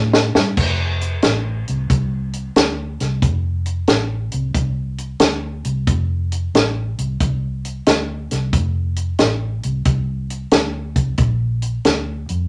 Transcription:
Already playing: A2
0.13 snare
0.35 G2, snare
0.57 F1, kick, crash
1.01 closed hi-hat
1.22 A1, snare, closed hi-hat
1.68 C2, closed hi-hat
1.90 C2, kick, closed hi-hat
2.33 closed hi-hat
2.56 D2, snare, closed hi-hat
3.00 C2, snare, closed hi-hat
3.22 F1, kick, closed hi-hat
3.66 closed hi-hat
3.87 A1, snare, closed hi-hat
4.32 C2, closed hi-hat
4.54 C2, kick, closed hi-hat
4.98 closed hi-hat
5.20 D2, snare, closed hi-hat
5.65 C2, closed hi-hat
5.87 F1, kick, closed hi-hat
6.32 closed hi-hat
6.54 A1, snare, closed hi-hat
6.98 C2, closed hi-hat
7.20 C2, kick, closed hi-hat
7.65 closed hi-hat
7.86 D2, snare, closed hi-hat
8.31 C2, snare, closed hi-hat
8.53 F1, kick, closed hi-hat
8.96 closed hi-hat
9.19 A1, snare, closed hi-hat
9.63 C2, closed hi-hat
9.85 C2, kick, closed hi-hat
10.30 closed hi-hat
10.51 D2, snare, closed hi-hat
10.96 C2, kick, closed hi-hat
11.18 A#1, kick, closed hi-hat
11.62 closed hi-hat
11.85 D2, snare, closed hi-hat
12.29 F2, closed hi-hat

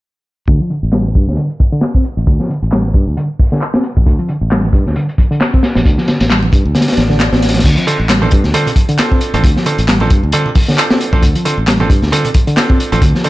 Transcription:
0.48 D2 D3, kick, closed hi-hat
0.61 F3, closed hi-hat
0.70 D3, closed hi-hat
0.83 A1
0.92 G3, snare, clap, closed hi-hat
1.15 G2, kick, closed hi-hat
1.27 D2, snare
1.37 D3, closed hi-hat
1.50 closed hi-hat
1.60 kick, closed hi-hat
1.72 D3, closed hi-hat
1.81 snare, clap, closed hi-hat
1.95 C4, kick
2.04 closed hi-hat
2.17 A1, closed hi-hat
2.27 D2 D3, kick, closed hi-hat
2.40 F3, snare
2.50 D3, closed hi-hat
2.62 A1, closed hi-hat
2.72 G3, snare, clap, closed hi-hat
2.94 G2, kick, closed hi-hat
3.07 D2
3.17 D3, closed hi-hat
3.39 kick, open hi-hat
3.52 D3, snare
3.61 clap, closed hi-hat
3.74 C4, snare
3.84 closed hi-hat
3.97 A1, kick
4.06 D2 D3, kick, closed hi-hat
4.19 F3, closed hi-hat
4.28 D3, closed hi-hat
4.41 A1
4.51 G3, snare, clap, closed hi-hat
4.65 high conga
4.73 G2, kick, closed hi-hat, low conga
4.86 D2, snare
4.96 D3, closed hi-hat
5.09 closed hi-hat
5.18 kick, closed hi-hat, high conga
5.31 D3, closed hi-hat
5.41 snare, clap, closed hi-hat
5.53 C4, kick
5.63 snare, closed hi-hat
5.75 A1, snare, closed hi-hat, high conga
5.85 D2 D3, kick, closed hi-hat
5.98 F3, snare
6.08 D3, snare, closed hi-hat
6.20 A1, snare, closed hi-hat
6.30 G3, snare, clap, closed hi-hat
6.43 high conga
6.52 G2, kick, closed hi-hat, low conga
6.65 D2
6.75 D3, snare, closed hi-hat, swell
6.81 snare, closed hi-hat
6.88 snare, closed hi-hat
6.92 snare, closed hi-hat
6.97 A1, snare, closed hi-hat, high conga
7.10 D3, snare
7.20 snare, clap, closed hi-hat
7.32 A1 C4, snare
7.42 snare, closed hi-hat
7.49 snare, closed hi-hat
7.54 snare, closed hi-hat, high conga
7.59 snare, closed hi-hat
7.64 D2 D3, kick, closed hi-hat, crash
7.77 F3, closed hi-hat
7.87 D3 C4 D4 F4 A4, closed hi-hat
8.00 A1
8.09 G3, snare, clap, closed hi-hat
8.22 C4 D4 F4 A4, high conga, low conga
8.31 G2, kick, closed hi-hat
8.44 D2, snare
8.54 D3 C4 D4 F4 A4, closed hi-hat
8.66 closed hi-hat, low conga
8.76 kick, closed hi-hat, high conga
8.89 D3, closed hi-hat
8.98 C4 D4 F4 A4, snare, clap, closed hi-hat
9.11 C4, kick
9.21 closed hi-hat
9.34 A1 C4 D4 F4 A4, closed hi-hat, high conga
9.44 D2 D3, kick, closed hi-hat
9.56 F3, snare
9.66 D3 C4 D4 F4 A4, closed hi-hat
9.78 A1, closed hi-hat
9.88 G3, snare, clap, closed hi-hat
10.00 C4 D4 F4 A4, high conga, low conga
10.10 G2, kick, closed hi-hat
10.23 D2
10.32 D3 C4 D4 F4 A4, closed hi-hat
10.46 low conga
10.55 kick, open hi-hat, high conga
10.69 D3, snare
10.78 C4 D4 F4 A4, clap, closed hi-hat
10.90 C4, snare
11.01 closed hi-hat
11.13 A1 C4 D4 F4 A4, kick, high conga
11.23 D2 D3, kick, closed hi-hat
11.35 F3, closed hi-hat
11.45 D3 C4 D4 F4 A4, closed hi-hat
11.58 A1
11.67 G3, snare, clap, closed hi-hat
11.80 C4 D4 F4 A4, high conga, low conga
11.90 G2, kick, closed hi-hat
12.02 D2, snare
12.12 D3 C4 D4 F4 A4, closed hi-hat
12.25 closed hi-hat, low conga
12.34 kick, closed hi-hat, high conga
12.47 D3, closed hi-hat
12.57 C4 D4 F4 A4, snare, clap, closed hi-hat
12.70 C4, kick
12.80 closed hi-hat
12.92 A1 C4 D4 F4 A4, closed hi-hat, high conga
13.02 D2 D3, kick, closed hi-hat
13.14 F3, snare
13.24 D3 C4 D4 F4 A4, closed hi-hat

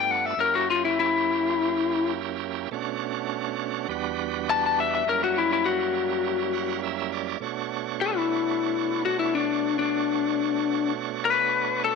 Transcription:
Already playing: G2 A3 B3 D4 F4
0.00 G5
0.11 F#5
0.26 E5
0.37 F#2 A#3 C#4 E4 G4 A#4
0.55 F#4
0.70 F4
0.85 E4
1.00 E4
2.71 B2 A3 C#4 D4 F#4
3.88 E2 G3 B3 D4 F#4
4.50 A5
4.66 A5
4.80 E5
4.95 E5
5.06 F#2 G3 A#3 C#4 E4 A#4
5.24 F#4
5.38 E4
5.53 E4
5.66 F#4
6.53 F#5
6.83 E5
7.13 D5
7.40 B2 A3 D4 F#4 C#5
8.01 A4
8.17 E4
9.05 F#4
9.19 E4
9.35 D4
9.79 D4
11.25 B4
11.84 A4

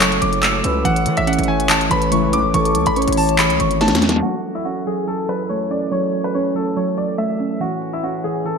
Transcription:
Already playing: F#1 F#3 A3 C#4 E4 A4 C#5
0.00 F#3 C#6, clap, closed hi-hat
0.12 closed hi-hat
0.22 F#1 F#3 D6, closed hi-hat
0.33 closed hi-hat
0.42 A3 E6, clap, closed hi-hat
0.64 C#2 C#4 B4, closed hi-hat
0.84 A1 E3 A3 E4 C#5 F#5, closed hi-hat
0.96 closed hi-hat
1.06 E3, closed hi-hat
1.17 A1 E5, closed hi-hat
1.27 C#4 F#5, closed hi-hat
1.33 closed hi-hat
1.39 A1, closed hi-hat
1.44 closed hi-hat
1.48 E3 C#5 G#5
1.60 closed hi-hat
1.69 E3 A5, clap, closed hi-hat
1.81 closed hi-hat
1.90 A1 E3 B4 B5, closed hi-hat
2.02 closed hi-hat
2.11 C#2 A2 E3 A3 C#6, closed hi-hat
2.33 B1 C#4 D6, closed hi-hat
2.44 A1
2.54 A1 E3 A4 C#6, closed hi-hat
2.65 closed hi-hat
2.75 C#2, closed hi-hat
2.86 A1 B5, closed hi-hat
2.96 C#4 C#5 C#6, closed hi-hat
3.02 closed hi-hat
3.08 A1, closed hi-hat
3.13 closed hi-hat
3.17 E3 A5, open hi-hat
3.29 closed hi-hat
3.39 E3 B5, clap, closed hi-hat
3.50 C#2, closed hi-hat
3.59 G#1 E3 C#6, closed hi-hat
3.71 closed hi-hat
3.81 A3 A5, snare, closed hi-hat
3.88 snare, closed hi-hat
3.92 E2, snare, closed hi-hat
4.01 C#4, snare, closed hi-hat
4.09 snare, closed hi-hat
4.16 snare, closed hi-hat
4.22 F#2 E3 F#3 F#4 A4
4.34 closed hi-hat
4.44 closed hi-hat
4.55 E4, closed hi-hat
4.65 C#4 F#4, closed hi-hat
4.71 closed hi-hat
4.77 closed hi-hat
4.82 closed hi-hat
4.87 F#3 G#4
4.98 closed hi-hat
5.07 F#3 A4, closed hi-hat
5.19 closed hi-hat
5.29 F#3 B4, closed hi-hat
5.40 closed hi-hat
5.49 A3 C#5, closed hi-hat
5.71 C#4 D5, closed hi-hat
5.91 F#3 C#5, closed hi-hat
6.03 closed hi-hat
6.13 closed hi-hat
6.24 B4, closed hi-hat
6.34 C#4 C#5, closed hi-hat
6.40 closed hi-hat
6.46 closed hi-hat
6.51 closed hi-hat
6.55 F#3 A4
6.67 closed hi-hat
6.76 F#3 C#5, closed hi-hat
6.88 closed hi-hat
6.98 F#3 D5, closed hi-hat
7.09 closed hi-hat
7.18 A3 E5, closed hi-hat
7.40 C#4, closed hi-hat
7.60 A2 E3 C#4 F#4, closed hi-hat
7.72 closed hi-hat
7.82 closed hi-hat
7.93 E4, closed hi-hat
8.03 C#4 F#4, closed hi-hat
8.09 closed hi-hat
8.15 closed hi-hat
8.20 closed hi-hat
8.24 E3 G#4
8.36 closed hi-hat
8.45 E3 A4, closed hi-hat

